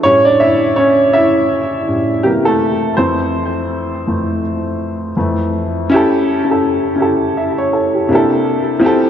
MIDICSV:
0, 0, Header, 1, 2, 480
1, 0, Start_track
1, 0, Tempo, 731707
1, 23, Time_signature, 4, 2, 24, 8
1, 5968, End_track
2, 0, Start_track
2, 0, Title_t, "Upright piano"
2, 0, Program_c, 0, 0
2, 0, Control_c, 0, 64, 127
2, 22, Note_on_c, 0, 73, 115
2, 27, Note_on_c, 0, 45, 62
2, 31, Control_c, 0, 64, 0
2, 32, Note_on_c, 0, 55, 51
2, 34, Note_on_c, 0, 61, 81
2, 160, Control_c, 0, 64, 127
2, 162, Note_off_c, 0, 61, 0
2, 164, Note_on_c, 0, 74, 91
2, 168, Note_off_c, 0, 73, 0
2, 179, Note_on_c, 0, 62, 73
2, 262, Note_on_c, 0, 76, 95
2, 264, Note_off_c, 0, 62, 0
2, 265, Note_off_c, 0, 74, 0
2, 276, Note_on_c, 0, 64, 78
2, 486, Note_off_c, 0, 76, 0
2, 493, Note_off_c, 0, 64, 0
2, 500, Note_on_c, 0, 73, 93
2, 516, Note_on_c, 0, 61, 78
2, 733, Note_off_c, 0, 61, 0
2, 744, Note_on_c, 0, 76, 96
2, 748, Note_off_c, 0, 73, 0
2, 758, Note_on_c, 0, 64, 83
2, 1225, Note_off_c, 0, 45, 0
2, 1225, Note_off_c, 0, 55, 0
2, 1235, Note_on_c, 0, 45, 47
2, 1235, Note_on_c, 0, 55, 42
2, 1237, Note_on_c, 0, 61, 52
2, 1444, Note_off_c, 0, 64, 0
2, 1445, Note_off_c, 0, 55, 0
2, 1446, Note_off_c, 0, 45, 0
2, 1447, Note_off_c, 0, 61, 0
2, 1465, Note_on_c, 0, 67, 88
2, 1470, Note_on_c, 0, 48, 59
2, 1471, Control_c, 0, 64, 0
2, 1474, Note_on_c, 0, 52, 54
2, 1479, Note_on_c, 0, 58, 62
2, 1480, Note_on_c, 0, 55, 63
2, 1485, Note_off_c, 0, 76, 0
2, 1498, Note_off_c, 0, 67, 0
2, 1513, Note_off_c, 0, 55, 0
2, 1598, Control_c, 0, 64, 127
2, 1609, Note_on_c, 0, 69, 97
2, 1622, Note_on_c, 0, 57, 65
2, 1922, Note_off_c, 0, 48, 0
2, 1922, Note_off_c, 0, 69, 0
2, 1925, Note_off_c, 0, 52, 0
2, 1927, Note_off_c, 0, 58, 0
2, 1929, Note_off_c, 0, 57, 0
2, 1947, Note_on_c, 0, 72, 90
2, 1951, Control_c, 0, 64, 0
2, 1952, Note_on_c, 0, 41, 57
2, 1957, Note_on_c, 0, 52, 54
2, 1959, Note_on_c, 0, 57, 58
2, 1961, Note_on_c, 0, 60, 72
2, 2065, Control_c, 0, 64, 127
2, 2283, Note_off_c, 0, 41, 0
2, 2286, Note_off_c, 0, 52, 0
2, 2287, Note_off_c, 0, 57, 0
2, 2672, Note_on_c, 0, 41, 44
2, 2675, Note_on_c, 0, 52, 42
2, 2678, Note_on_c, 0, 57, 49
2, 2884, Note_off_c, 0, 41, 0
2, 2886, Note_off_c, 0, 52, 0
2, 2887, Note_off_c, 0, 57, 0
2, 3359, Note_off_c, 0, 72, 0
2, 3366, Note_off_c, 0, 60, 0
2, 3390, Note_on_c, 0, 41, 55
2, 3391, Control_c, 0, 64, 0
2, 3395, Note_on_c, 0, 52, 54
2, 3397, Note_on_c, 0, 57, 62
2, 3501, Control_c, 0, 64, 127
2, 3843, Note_off_c, 0, 41, 0
2, 3845, Note_off_c, 0, 52, 0
2, 3846, Note_off_c, 0, 57, 0
2, 3867, Note_on_c, 0, 61, 102
2, 3872, Control_c, 0, 64, 0
2, 3881, Note_on_c, 0, 64, 102
2, 3896, Note_on_c, 0, 67, 89
2, 3911, Note_on_c, 0, 69, 103
2, 3996, Control_c, 0, 64, 127
2, 4171, Note_off_c, 0, 61, 0
2, 4178, Note_off_c, 0, 64, 0
2, 4185, Note_off_c, 0, 67, 0
2, 4193, Note_off_c, 0, 69, 0
2, 4229, Note_on_c, 0, 61, 72
2, 4244, Note_on_c, 0, 64, 64
2, 4259, Note_on_c, 0, 67, 65
2, 4273, Note_on_c, 0, 69, 76
2, 4523, Note_off_c, 0, 61, 0
2, 4530, Note_off_c, 0, 64, 0
2, 4537, Note_off_c, 0, 67, 0
2, 4544, Note_off_c, 0, 69, 0
2, 4564, Note_on_c, 0, 61, 72
2, 4577, Note_on_c, 0, 64, 67
2, 4591, Note_on_c, 0, 67, 68
2, 4605, Note_on_c, 0, 69, 78
2, 4827, Note_off_c, 0, 67, 0
2, 4834, Note_off_c, 0, 69, 0
2, 4836, Note_on_c, 0, 76, 57
2, 4964, Note_off_c, 0, 76, 0
2, 4973, Note_on_c, 0, 73, 65
2, 5063, Note_off_c, 0, 73, 0
2, 5072, Note_on_c, 0, 69, 61
2, 5202, Note_off_c, 0, 69, 0
2, 5212, Note_on_c, 0, 67, 47
2, 5293, Note_off_c, 0, 61, 0
2, 5300, Note_off_c, 0, 64, 0
2, 5305, Note_on_c, 0, 48, 82
2, 5310, Control_c, 0, 64, 0
2, 5313, Note_on_c, 0, 58, 68
2, 5323, Note_on_c, 0, 62, 73
2, 5329, Note_off_c, 0, 67, 0
2, 5331, Note_on_c, 0, 64, 83
2, 5339, Note_on_c, 0, 67, 73
2, 5348, Note_on_c, 0, 69, 94
2, 5422, Control_c, 0, 64, 127
2, 5714, Note_off_c, 0, 48, 0
2, 5718, Note_off_c, 0, 58, 0
2, 5723, Note_off_c, 0, 62, 0
2, 5727, Note_off_c, 0, 64, 0
2, 5731, Note_off_c, 0, 67, 0
2, 5735, Note_off_c, 0, 69, 0
2, 5770, Note_on_c, 0, 53, 89
2, 5780, Note_on_c, 0, 60, 98
2, 5791, Note_on_c, 0, 64, 92
2, 5792, Control_c, 0, 64, 0
2, 5802, Note_on_c, 0, 67, 97
2, 5813, Note_on_c, 0, 69, 109
2, 5902, Control_c, 0, 64, 127
2, 5968, Note_off_c, 0, 53, 0
2, 5968, Note_off_c, 0, 60, 0
2, 5968, Note_off_c, 0, 64, 0
2, 5968, Note_off_c, 0, 67, 0
2, 5968, Note_off_c, 0, 69, 0
2, 5968, End_track
0, 0, End_of_file